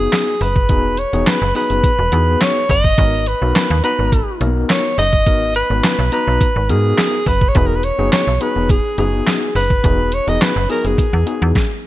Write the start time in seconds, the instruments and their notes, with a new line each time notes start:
Already playing: tine electric piano B3 D#4 F#4 G#4, alto saxophone G#4
0.12 snare, clap, closed hi-hat
0.41 fm bass F#1, alto saxophone B4, open hi-hat
0.56 kick
0.69 fm bass E1, tine electric piano B3 D#4 F#4 G#4, kick, closed hi-hat
0.97 alto saxophone C#5, closed hi-hat
1.13 fm bass E1, tine electric piano B3 D#4 F#4 G#4, closed hi-hat
1.27 alto saxophone B4, snare, clap, closed hi-hat
1.42 fm bass F#1
1.55 tine electric piano B3 D#4 F#4 G#4, alto saxophone B4, open hi-hat
1.70 fm bass F#1, closed hi-hat
1.84 kick, closed hi-hat
1.99 fm bass E1
2.12 fm bass E2, tine electric piano B3 D#4 F#4 G#4, closed hi-hat
2.41 alto saxophone C#5, snare, clap, closed hi-hat
2.69 fm bass F#1, alto saxophone D#5, kick, open hi-hat
2.84 kick
2.98 fm bass G#1, tine electric piano B3 D#4 F#4 A#4, kick, closed hi-hat
3.26 alto saxophone B4, closed hi-hat
3.41 fm bass B1, tine electric piano B3 D#4 F#4 A#4
3.55 snare, clap, closed hi-hat
3.70 fm bass D#2
3.83 tine electric piano B3 D#4 F#4 A#5, alto saxophone B4, closed hi-hat
3.99 fm bass G#1
4.12 kick, closed hi-hat
4.40 fm bass B1, tine electric piano A#3 D#4 F#4 A#4, closed hi-hat
4.47 tine electric piano B3
4.69 alto saxophone C#5, snare, clap, closed hi-hat
4.98 fm bass F#1, alto saxophone D#5, open hi-hat
5.13 kick
5.26 fm bass G#1, tine electric piano B3 D#4 F#4 A#4, kick, closed hi-hat
5.55 alto saxophone B4, closed hi-hat
5.70 fm bass G#1, tine electric piano B3 D#4 F#4 B4
5.84 snare, clap, closed hi-hat
5.99 fm bass B1
6.12 tine electric piano B3 D#4 F#4 A#5, alto saxophone B4, closed hi-hat
6.28 fm bass B1
6.41 kick, closed hi-hat
6.56 fm bass G#1
6.69 fm bass G#2, tine electric piano B3 D#4 F#4 A#4, alto saxophone G#4, closed hi-hat
6.98 snare, clap, closed hi-hat
7.26 fm bass F#1, alto saxophone B4, kick, open hi-hat
7.41 kick
7.49 alto saxophone C#5
7.55 fm bass E1, tine electric piano B3 D#4 F#4 G#4, alto saxophone B4, kick, closed hi-hat
7.67 alto saxophone A#4
7.76 alto saxophone B4
7.83 alto saxophone C#5, closed hi-hat
7.98 fm bass F#1, tine electric piano B3 D#4 F#4 G#4
8.12 alto saxophone C#5, snare, clap, closed hi-hat
8.27 fm bass B1
8.41 tine electric piano B3 D#4 F#4 G#4, alto saxophone B4, closed hi-hat
8.56 fm bass E1
8.69 alto saxophone G#4, kick, closed hi-hat
8.98 fm bass F#1, tine electric piano B3 D#4 F#4 G#4, alto saxophone G#4, closed hi-hat
9.27 snare, clap, closed hi-hat
9.55 fm bass F#1, alto saxophone B4, open hi-hat
9.70 kick
9.83 fm bass E1, tine electric piano B3 D#4 F#4 G#4, kick, closed hi-hat
10.12 alto saxophone C#5, closed hi-hat
10.27 fm bass E1, tine electric piano B3 D#4 F#4 G#4, alto saxophone D#5, closed hi-hat
10.41 alto saxophone B4, snare, clap, closed hi-hat
10.56 fm bass F#1
10.69 tine electric piano B3 D#4 F#4 G#4, alto saxophone A#4, open hi-hat
10.85 fm bass F#1, alto saxophone G#4, closed hi-hat
10.98 kick, closed hi-hat
11.13 fm bass E2
11.26 tine electric piano B3 D#4 F#4 G#4, closed hi-hat
11.42 fm bass E2
11.55 kick, snare